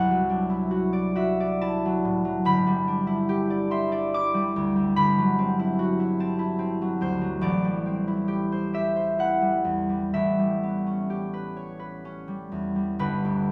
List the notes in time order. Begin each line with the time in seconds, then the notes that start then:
Already playing: C2 E4 F#4 E5 F#5
0.11 F#3
0.30 D4
0.50 E4
0.71 F#4
0.93 D5
1.15 F#4 E5
1.40 D5
1.61 E4 A5
1.85 F#3
2.05 A2
2.25 F#3
2.45 G1 B5
2.66 G3
2.88 D4
3.07 E4
3.29 G4
3.50 D5
3.71 E5 C6
3.92 D5
4.14 E4 D6
4.34 G3
4.56 D2
4.76 G3
4.96 G1 B5
5.18 F#3
5.38 C4
5.59 E4
5.79 F#4
6.00 E4
6.20 C4 A5
6.39 E4
6.59 C4
6.82 F#3
7.01 D2 C5
7.22 F#3
7.41 A1 D5
7.65 G3
7.86 C4
8.07 E4
8.28 G4
8.52 C5
8.73 G4 E5
8.96 C5
9.19 E4 F#5
9.42 G3
9.64 E2
9.89 G3
10.14 A1 E5
10.39 G3
10.63 B3
10.86 C#4
11.10 G4
11.34 B4
11.57 C#5
11.79 B4
12.05 C#4
12.28 G3
12.52 E2
12.76 G3
12.99 G1 B4
13.25 D2